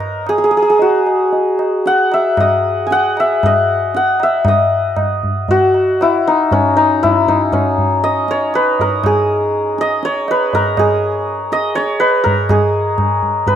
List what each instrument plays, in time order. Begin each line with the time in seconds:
Already playing: santur A#4 C#5 D#5
0.00 tabla na
0.27 santur G#4, tabla na
0.38 santur G#4
0.44 santur G#4
0.51 santur G#4
0.57 santur G#4
0.62 santur G#4
0.70 santur G#4
0.79 santur F#4, tabla tin
1.07 tabla na
1.33 tabla tin
1.59 tabla na
1.86 santur F#5, tabla te
2.12 santur E5, tabla na
2.37 santur D#5, tabla na, tabla ge
2.87 santur G#5
2.91 santur F#5, tabla te
3.17 santur E5, tabla na
3.43 santur D#5, tabla na, tabla ge
3.95 santur F#5, tabla te
4.20 santur E5, tabla na
4.45 santur D#5, tabla na, tabla ge
4.96 tabla na, tabla ge
5.23 tabla ge
5.48 santur F#4, tabla tin, tabla ge
5.74 tabla na
6.01 santur E4, tabla na
6.27 santur D#4
6.51 santur C#4, tabla tin, tabla ge
6.77 santur D#4
7.03 santur E4, tabla na, tabla ge
7.28 santur D#4, tabla ge
7.53 santur C#4, tabla na, tabla ge
7.78 tabla ge
8.04 santur D#5, tabla te
8.28 santur C#5, tabla te
8.54 santur B4, tabla na
8.79 santur A#4, tabla tin, tabla ge
9.04 santur G#4, tabla na, tabla ge
9.78 santur D#5, tabla te
10.03 santur C#5, tabla te
10.28 santur B4, tabla na
10.53 santur A#4, tabla tin, tabla ge
10.77 santur G#4, tabla na, tabla ge
11.52 santur D#5, tabla te
11.75 santur C#5, tabla te
12.00 santur B4, tabla na
12.24 santur A#4, tabla tin, tabla ge
12.49 santur G#4, tabla na, tabla ge
12.98 tabla na, tabla ge
13.23 tabla ge
13.47 santur B4, tabla tin, tabla ge